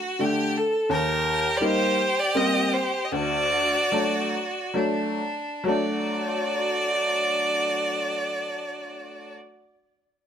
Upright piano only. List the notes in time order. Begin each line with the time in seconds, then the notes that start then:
0.19 D3 A3 D4
0.89 D#2
1.61 G3 A#3 D#4
2.35 G3 A#3 C4
3.12 D2
3.92 F#3 A3 D4
4.74 F#3 A3 D4
5.64 F#3 A3
5.68 D4